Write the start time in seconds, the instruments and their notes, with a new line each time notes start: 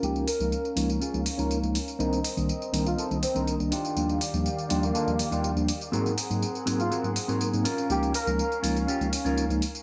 Already playing: clean electric guitar C#4 F4 A#4, string section C#4 A#4 F5
0.02 tine electric piano C#2 F3 G#3 A#3 D#4, horn section G4, tambourine
0.16 tambourine
0.28 horn section A#4, open hi-hat, tambourine
0.39 tine electric piano C#2 F3 G#3 A#3 D#4, muted clean electric guitar stroke, tambourine
0.52 tambourine
0.65 tambourine
0.76 tine electric piano C#2 F3 G#3 A#3 D#4, clean electric guitar C#4 F4 A#4, open hi-hat, tambourine
0.90 tambourine
1.00 clean electric guitar C#4 F4 G#4, tambourine
1.14 tine electric piano C#2 F3 G#3 A#3 D#4, tambourine
1.26 open hi-hat, tambourine
1.38 tine electric piano C#2 F3 G#3 A#3 D#4, clean electric guitar C#4 F4 A#4, tambourine
1.51 tambourine
1.63 tine electric piano C#2 F3 G#3 A#3 D#4, tambourine
1.74 muted clean electric guitar stroke, open hi-hat, tambourine
1.88 tambourine
1.99 tine electric piano C2 D#3 G3 A#3 D4, clean electric guitar C4 D#4 A#4, string section C4 D#5, tambourine
2.13 tambourine
2.24 open hi-hat, tambourine
2.36 tine electric piano C2 D#3 G3 A#3 D4, muted clean electric guitar stroke, tambourine
2.49 tambourine
2.62 tambourine
2.73 tine electric piano C2 D#3 G3 A#3 D4, clean electric guitar C4 D#4 A#4, open hi-hat, tambourine
2.86 horn section F4, tambourine
2.97 clean electric guitar C4 D#4 A4, tambourine
3.10 tine electric piano C2 D#3 G3 A#3 D4, tambourine
3.23 horn section C4, open hi-hat, tambourine
3.35 tine electric piano C2 D#3 G3 A#3 D4, clean electric guitar C4 D#4 A#4, tambourine
3.47 tambourine
3.60 tine electric piano C2 D#3 G3 A#3 D4, tambourine
3.71 string section D#3 G4 D5 F5, clean electric guitar D4 D#4 F4 G4, open hi-hat, tambourine
3.85 tambourine
3.96 tine electric piano D#2 F3 G3 A#3 D4, tambourine
4.09 tambourine
4.21 open hi-hat, tambourine
4.33 tine electric piano D#2 F3 G3 A#3 D4, muted clean electric guitar stroke, tambourine
4.46 tambourine
4.59 tambourine
4.69 tine electric piano D#2 F3 G3 A#3 D4, clean electric guitar D4 D#4 F4 G4, open hi-hat, tambourine
4.83 horn section A#3, tambourine
4.94 clean electric guitar D4 D#4 F4 A4, tambourine
5.07 tine electric piano D#2 F3 G3 A#3 D4, tambourine
5.19 open hi-hat, tambourine
5.31 tine electric piano D#2 F3 G3 A#3 D4, clean electric guitar D4 D#4 F4 G4, tambourine
5.44 tambourine
5.56 tine electric piano D#2 F3 G3 A#3 D4, tambourine
5.68 muted clean electric guitar stroke, open hi-hat, tambourine
5.81 tambourine
5.92 tine electric piano G#2 F#3 A#3 C4 D#4, clean electric guitar C4 F#4 G#4 A#4, string section C4 G#4 A#4 F#5, tambourine
6.06 tambourine
6.18 open hi-hat, tambourine
6.29 tine electric piano G#2 F#3 A#3 C4 D#4, muted clean electric guitar stroke, tambourine
6.43 tambourine
6.55 tambourine
6.66 tine electric piano G#2 F#3 A#3 C4 D#4, clean electric guitar C4 F#4 G#4 A#4, open hi-hat, tambourine
6.80 horn section F4, tambourine
6.90 clean electric guitar C4 F#4 G#4 A#4, tambourine
7.04 tine electric piano G#2 F#3 A#3 C4 D#4, tambourine
7.16 open hi-hat, tambourine
7.28 tine electric piano G#2 F#3 A#3 C4 D#4, clean electric guitar C4 F#4 G#4 A#4, tambourine
7.41 tambourine
7.53 tine electric piano G#2 F#3 A#3 C4 D#4, tambourine
7.64 clean electric guitar C#4 F4 A#4, string section C#4 F5, open hi-hat, tambourine
7.78 tambourine
7.90 tine electric piano C#2 F3 G#3 A#3 D#4, horn section G4, tambourine
8.03 tambourine
8.14 horn section A#4, open hi-hat, tambourine
8.26 tine electric piano C#2 F3 G#3 A#3 D#4, muted clean electric guitar stroke, tambourine
8.39 tambourine
8.52 tambourine
8.63 tine electric piano C#2 F3 G#3 A#3 D#4, clean electric guitar C#4 F4 A#4, open hi-hat, tambourine
8.77 tambourine
8.87 clean electric guitar C#4 F4 G4, tambourine
9.01 tine electric piano C#2 F3 G#3 A#3 D#4, tambourine
9.13 open hi-hat, tambourine
9.25 tine electric piano C#2 F3 G#3 A#3 D#4, clean electric guitar C#4 F4 A#4, tambourine
9.38 tambourine
9.50 tine electric piano C#2 F3 G#3 A#3 D#4, tambourine
9.61 muted clean electric guitar stroke, open hi-hat, tambourine
9.75 tambourine